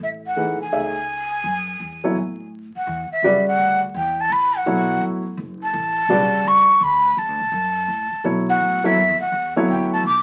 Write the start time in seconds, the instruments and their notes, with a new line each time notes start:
0.00 upright bass A1, flute E5
0.27 flute F#5
0.36 grand piano E3 A3 D#4 G#4 B4
0.60 flute G#5, muted upright bass stroke
0.72 upright bass C#2, grand piano A3 D#4 G#4 C#5 E5
1.44 upright bass F#2
1.80 upright bass E2
2.04 grand piano F#3 B3 E4 A4 C#5
2.16 upright bass A2
2.75 flute F#5, muted upright bass stroke
2.87 upright bass E2
3.11 flute E5, muted upright bass stroke
3.22 upright bass F#2, grand piano C#3 G3 F#4 B4 D5
3.46 flute F#5, muted upright bass stroke
3.58 upright bass D2
3.94 upright bass E2, flute G5
4.20 flute A5
4.30 upright bass A1, flute B5
4.57 flute F#5
4.66 upright bass B1, grand piano F#3 B3 E4 A4 C#5
5.01 upright bass A1
5.37 upright bass F#1
5.63 flute A5
5.73 upright bass A1
6.09 upright bass B1, grand piano C#3 G3 F#4 B4 D5
6.45 upright bass C#2, flute C#6
6.81 upright bass D2, flute B5
7.17 upright bass E2, flute A5
7.28 upright bass D2
7.40 upright bass B1
7.52 upright bass F#2
7.88 upright bass A2
8.12 muted upright bass stroke
8.24 upright bass B2, grand piano F#3 B3 E4 A4 C#5
8.49 flute F#5
8.60 upright bass A2
8.84 grand piano F#3 B3 E4 A4 C#5, flute E5, muted upright bass stroke
8.96 upright bass F#2
9.09 upright bass E2
9.20 upright bass D2, flute F#5
9.32 upright bass E2
9.56 grand piano F#3 B3 E4 A4 C#5
9.68 upright bass D2, flute G5
9.93 flute A5
10.03 upright bass B1, flute D6